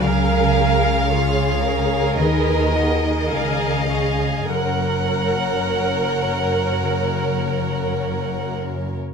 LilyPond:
<<
  \new Staff \with { instrumentName = "Violin section" } { \time 4/4 \key fis \major \tempo 4 = 52 eis''2 dis''4 eis''4 | fis''2.~ fis''8 r8 | }
  \new Staff \with { instrumentName = "Viola section" } { \time 4/4 \key fis \major ais'4 gis'2 ais'8 gis'8 | ais'2.~ ais'8 r8 | }
  \new Staff \with { instrumentName = "Violin section" } { \time 4/4 \key fis \major << { eis''4 cis''4 b'8 dis''4. | cis''1 | } \\ { gis'4 eis'8 ais'4. gis'8 gis'8 | ais'1 | } >> }
  \new Staff \with { instrumentName = "Harp" } { \time 4/4 \key fis \major cis8 cis'8 cis''8 cis'8 dis8 <fis' b'>8 cis8 <cis' cis''>8 | fis,8 ais8 cis'8 ais8 cis8 ais8 cis'8 ais8 | }
  \new Staff \with { instrumentName = "Cello section" } { \clef bass \time 4/4 \key fis \major cis2 dis4 cis4 | fis,1 | }
  \new Staff \with { instrumentName = "Double bass section" } { \clef bass \time 4/4 \key fis \major cis,2 dis,4 cis,4 | fis,,1 | }
>>